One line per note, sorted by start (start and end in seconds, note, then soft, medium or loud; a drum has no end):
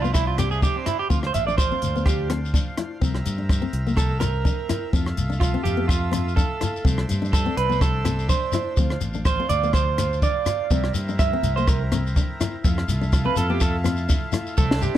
0.00 0.66 C2 medium
0.00 2.98 D4 medium
0.00 1.09 E4 medium
0.00 0.13 F4 medium
0.00 2.98 C5 medium
0.04 0.22 B3 medium
0.04 shekere soft
0.14 0.27 E4 medium
0.14 kick medium
0.14 cross-stick medium
0.14 shekere medium
0.27 0.38 F4 medium
0.38 0.57 C4 medium
0.38 0.51 G4 medium
0.38 cross-stick medium
0.38 closed hi-hat soft
0.38 shekere loud
0.51 0.62 G#4 medium
0.51 shekere soft
0.62 0.81 D4 medium
0.62 0.76 G4 medium
0.62 kick medium
0.62 shekere medium
0.76 0.87 C4 medium
0.86 0.99 E4 medium
0.86 cross-stick medium
0.86 closed hi-hat soft
0.86 shekere medium
0.99 1.10 G4 medium
1.10 1.29 D2 loud
1.10 1.29 C4 medium
1.10 1.18 F4 medium
1.10 3.01 F4 medium
1.10 kick medium
1.10 shekere medium
1.23 1.34 C5 medium
1.23 cross-stick medium
1.34 1.72 A1 medium
1.34 1.46 E5 loud
1.34 closed hi-hat medium
1.34 shekere medium
1.47 1.66 D4 medium
1.47 1.57 D5 medium
1.47 shekere soft
1.57 2.03 C5 medium
1.57 kick medium
1.57 cross-stick medium
1.57 shekere medium
1.72 1.90 C4 medium
1.82 2.58 D2 medium
1.82 closed hi-hat medium
1.82 shekere medium
1.96 2.14 B3 medium
1.96 shekere soft
2.06 2.29 G4 medium
2.06 kick medium
2.06 cross-stick medium
2.06 shekere medium
2.30 2.49 C4 medium
2.30 muted clean electric guitar stroke medium
2.30 cross-stick medium
2.30 closed hi-hat medium
2.45 shekere soft
2.54 2.73 D4 medium
2.54 kick medium
2.54 shekere medium
2.77 2.96 E4 medium
2.77 cross-stick medium
2.77 closed hi-hat soft
3.01 3.21 C2 loud
3.01 3.20 C4 medium
3.01 4.92 C4 medium
3.01 4.92 A#4 medium
3.01 8.74 E5 medium
3.01 kick loud
3.01 shekere medium
3.15 cross-stick medium
3.26 3.64 G2 medium
3.26 closed hi-hat soft
3.26 shekere medium
3.38 3.57 D4 medium
3.49 kick medium
3.49 cross-stick medium
3.49 shekere medium
3.62 3.81 C4 medium
3.73 4.49 C2 medium
3.73 closed hi-hat soft
3.87 4.05 A#3 medium
3.87 shekere soft
3.97 4.20 A4 medium
3.97 kick medium
3.97 cross-stick medium
3.97 shekere medium
4.20 4.89 A#4 medium
4.20 muted nylon-string guitar stroke medium
4.20 cross-stick medium
4.20 closed hi-hat soft
4.20 shekere medium
4.45 4.63 D4 medium
4.45 kick medium
4.45 shekere medium
4.69 4.88 E4 medium
4.69 cross-stick medium
4.69 closed hi-hat soft
4.69 shekere medium
4.93 5.12 F2 loud
4.93 5.12 C4 medium
4.93 6.84 F4 medium
4.93 6.84 A4 medium
4.93 kick medium
4.93 shekere medium
5.06 cross-stick medium
5.17 5.55 C2 medium
5.17 closed hi-hat soft
5.17 shekere medium
5.30 5.48 D4 medium
5.30 shekere soft
5.40 5.63 F4 medium
5.40 kick medium
5.40 cross-stick medium
5.40 shekere medium
5.54 5.72 C4 medium
5.64 6.41 F2 medium
5.64 5.87 G4 loud
5.64 closed hi-hat medium
5.64 shekere medium
5.77 5.96 B3 medium
5.88 6.33 F4 medium
5.88 kick medium
5.88 cross-stick medium
5.88 shekere medium
6.11 6.30 C4 medium
6.11 cross-stick medium
6.11 closed hi-hat medium
6.11 shekere medium
6.28 shekere soft
6.36 6.55 D4 medium
6.36 7.05 A4 medium
6.36 kick medium
6.36 shekere medium
6.61 6.79 E4 medium
6.61 cross-stick medium
6.61 closed hi-hat medium
6.61 shekere medium
6.76 shekere soft
6.84 7.04 C2 loud
6.84 7.03 C4 medium
6.84 10.66 D4 medium
6.84 10.66 C5 medium
6.84 kick medium
6.84 shekere medium
6.98 cross-stick medium
7.09 7.47 G2 medium
7.09 closed hi-hat soft
7.09 shekere loud
7.22 7.40 D4 medium
7.22 shekere soft
7.33 7.57 A4 medium
7.33 kick loud
7.33 cross-stick medium
7.33 shekere medium
7.46 7.64 C4 medium
7.57 8.33 C2 medium
7.57 7.81 B4 loud
7.57 closed hi-hat soft
7.70 7.88 B3 medium
7.70 shekere soft
7.81 8.27 A4 medium
7.81 kick medium
7.81 cross-stick medium
7.81 shekere medium
8.05 8.23 C4 medium
8.05 cross-stick medium
8.05 closed hi-hat soft
8.05 shekere medium
8.19 shekere soft
8.29 8.48 D4 medium
8.29 8.98 C5 medium
8.29 kick medium
8.29 shekere medium
8.52 8.72 E4 medium
8.52 cross-stick medium
8.52 closed hi-hat soft
8.52 shekere medium
8.77 8.96 D2 loud
8.77 8.97 C4 medium
8.77 10.69 F4 medium
8.77 kick medium
8.77 shekere medium
8.90 cross-stick medium
9.01 9.40 A1 medium
9.01 closed hi-hat soft
9.01 shekere medium
9.14 9.33 D4 medium
9.14 shekere soft
9.25 9.49 C5 medium
9.25 kick medium
9.25 cross-stick medium
9.25 shekere medium
9.40 9.58 C4 medium
9.49 10.26 D2 medium
9.49 9.73 D5 loud
9.49 closed hi-hat medium
9.49 shekere medium
9.63 9.82 B3 medium
9.63 shekere soft
9.73 10.19 C5 medium
9.73 kick medium
9.73 cross-stick medium
9.73 shekere medium
9.98 cross-stick medium
9.98 closed hi-hat medium
9.98 shekere medium
10.13 shekere soft
10.22 10.41 D4 medium
10.22 10.91 D5 medium
10.22 kick medium
10.22 shekere medium
10.46 cross-stick medium
10.46 closed hi-hat medium
10.46 shekere loud
10.71 10.90 C2 loud
10.71 10.90 C4 medium
10.71 12.63 C4 medium
10.71 14.54 E4 medium
10.71 12.63 A#4 medium
10.71 kick medium
10.71 shekere medium
10.84 cross-stick medium
10.94 11.33 G2 medium
10.94 closed hi-hat medium
10.94 shekere loud
11.09 11.27 D4 medium
11.09 shekere soft
11.19 11.54 E5 medium
11.19 kick loud
11.19 cross-stick medium
11.19 shekere medium
11.33 11.51 C4 medium
11.43 12.19 C2 medium
11.43 closed hi-hat medium
11.43 shekere medium
11.56 11.76 A#3 medium
11.56 11.67 C5 medium
11.56 shekere soft
11.67 11.82 A#4 medium
11.67 kick medium
11.67 cross-stick medium
11.67 shekere medium
11.92 12.10 C4 medium
11.92 cross-stick medium
11.92 closed hi-hat medium
11.92 shekere medium
12.07 shekere soft
12.16 12.35 D4 medium
12.16 kick medium
12.16 shekere medium
12.41 12.59 E4 medium
12.41 cross-stick medium
12.41 closed hi-hat soft
12.41 shekere medium
12.64 12.83 F2 loud
12.64 12.83 C4 medium
12.64 14.56 F4 medium
12.64 14.56 A4 medium
12.64 kick medium
12.64 shekere medium
12.78 cross-stick medium
12.88 13.26 C2 medium
12.88 closed hi-hat soft
12.88 shekere loud
13.01 13.20 D4 medium
13.01 shekere soft
13.13 kick medium
13.13 cross-stick medium
13.13 shekere medium
13.25 13.44 C4 medium
13.25 13.37 B4 medium
13.36 14.13 F2 loud
13.36 13.50 A4 loud
13.36 closed hi-hat medium
13.36 shekere medium
13.50 13.68 B3 medium
13.50 13.61 G4 medium
13.60 13.76 A4 medium
13.60 kick medium
13.60 cross-stick medium
13.60 shekere medium
13.84 14.03 C4 medium
13.84 cross-stick medium
13.84 closed hi-hat medium
13.84 shekere medium
13.97 shekere soft
14.09 14.27 D4 medium
14.09 kick medium
14.09 shekere medium
14.32 14.51 E4 medium
14.32 cross-stick medium
14.32 closed hi-hat medium
14.32 shekere loud
14.47 shekere soft
14.57 14.87 C2 loud
14.57 14.98 D4 medium
14.57 14.98 E4 medium
14.57 14.81 A4 medium
14.57 14.98 C5 medium
14.57 muted nylon-string guitar stroke medium
14.57 kick loud
14.57 shekere medium
14.71 snare medium
14.82 14.98 G4 medium
14.82 shekere loud
14.95 14.98 D4 medium